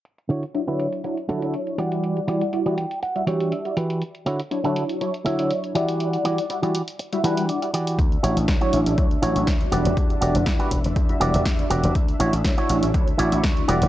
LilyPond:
<<
  \new Staff \with { instrumentName = "String machine" } { \time 4/4 \key d \major \tempo 4 = 121 r1 | r1 | r1 | r1 |
<d' e''>1~ | <d' e''>1~ | <d' e''>1 | }
  \new Staff \with { instrumentName = "Clean electric guitar" } { \time 4/4 \key d \major << { r1 | r4. g''8 fis''8 e''8 e''4 | r1 | r2. d''4 |
r1 | r1 | r1 | } \\ { r8 <d e' fis' cis''>16 r8 <d e' fis' b'>16 r4 <d e' fis' a'>8 r8 <e fis' g' d''>8~ | <e fis' g' d''>16 r16 <e fis' g' d''>16 r8 <e fis' g' d''>16 r4 <e fis' g' cis''>8 r8 <e fis' g' b'>8 | r8 <d e' fis' cis''>16 r8 <d e' fis' a'>16 r4 <d e' fis' e''>8 r8 <e fis' g' d''>8~ | <e fis' g' d''>16 r16 <e fis' g' d''>16 r8 <e fis' g' d''>16 r4 <e fis' g' b'>8 r8 <e fis' g' d''>8 |
r8 <e' fis' cis''>16 r8 <e' fis' cis''>16 r4 <e' fis' cis''>8 r8 <fis' g' d''>8~ | <fis' g' d''>16 r16 <fis' g' d''>16 r8 <fis' g' b'>16 r4 <fis' g' d''>8 r8 <fis' g' d''>8 | r8 <e' fis' cis''>16 r8 <e' fis' cis''>16 r4 <e' fis' d''>8 r8 <fis' g' d''>8 | } >> }
  \new Staff \with { instrumentName = "Analog polysynth" } { \time 4/4 \key d \major r4 <fis d' e' cis''>16 <fis d' e' cis''>8. <fis d' e' cis''>16 r16 <fis d' e' cis''>16 <fis d' e' cis''>8. <g e' d'' fis''>8~ | <g e' d'' fis''>4 <g e' fis' d''>16 <g e' fis' d''>16 r8. <g e' fis' e''>16 <g d' e'>8. <g e' fis' d''>16 r8 | r4 <fis d' e' cis''>16 <fis d' e' cis''>8. <fis d' e' cis''>16 r16 <fis d' e' cis''>16 <fis d' e' cis''>8. <g e' d'' fis''>8~ | <g e' d'' fis''>4 <g e' fis' d''>16 <g e' fis' d''>16 r8. <g e' fis' e''>16 <g d' e' fis''>8. <g e' fis' d''>16 r8 |
r4 <fis d' e' cis''>16 <fis d' e' cis''>8. <fis d' e' cis''>16 r16 <fis d' e' cis''>16 <fis d' e' cis''>8. <g e' d'' fis''>8~ | <g e' d'' fis''>4 <g e' fis' d''>16 <g e' fis' d''>16 r8. <g e' fis' e''>16 <g e' d'' fis''>8. <g e' fis' d''>16 r8 | r4 <fis d' e' cis''>16 <fis d' e' cis''>8. <fis d' e' cis''>16 r16 <fis d' e' cis''>16 <fis d' e' cis'''>8. <g e' d'' fis''>8 | }
  \new Staff \with { instrumentName = "Slap bass" } { \clef bass \time 4/4 \key d \major r1 | r1 | r1 | r1 |
d,16 r16 a,,16 a,,16 r8 a,,16 a,,16 r8 a,,16 a,,16 r8 e,,16 e,,16 | e,16 r16 e,,16 e,,16 r8 e,,16 e,,16 e,16 r16 e,,16 e,,16 e,16 r16 e,,16 e,,16 | r8 a,,16 a,,16 r8 a,,16 a,,16 r8 a,,16 a,,16 r8 e,,16 e,,16 | }
  \new DrumStaff \with { instrumentName = "Drums" } \drummode { \time 4/4 hh16 hh16 hh16 hh16 hh16 hh16 hh16 hh16 hh16 hh16 hh16 hh16 hh16 hh16 hh16 hh16 | hh16 hh16 hh16 hh16 hh16 hh16 hh16 hh16 hh16 hh16 hh16 hh16 hh16 hh16 hh16 hh16 | hh16 hh16 hh16 hh16 hh16 hh16 hh16 hh16 hh16 hh16 hh16 hh16 hh16 hh16 hh16 hh16 | hh16 hh16 hh16 hh16 hh16 hh16 hh16 hh16 hh16 hh16 hh16 hh16 hh16 hh16 hh16 hh16 |
<hh bd>16 hh16 hh16 hh16 <hh bd sn>16 hh16 hh16 hh16 <hh bd>16 hh16 hh16 hh16 <hh bd sn>16 hh16 hh16 hh16 | <hh bd>16 hh16 hh16 hh16 <hh bd sn>16 hh16 <hh bd>16 hh16 <hh bd>16 hh16 hh16 hh16 <hh bd sn>16 hh16 hh16 hh16 | <hh bd>16 hh16 hh16 hh16 <hh bd sn>16 hh16 hh16 hh16 <hh bd>16 hh16 hh16 hh16 <hh bd sn>16 hh16 hh16 hh16 | }
>>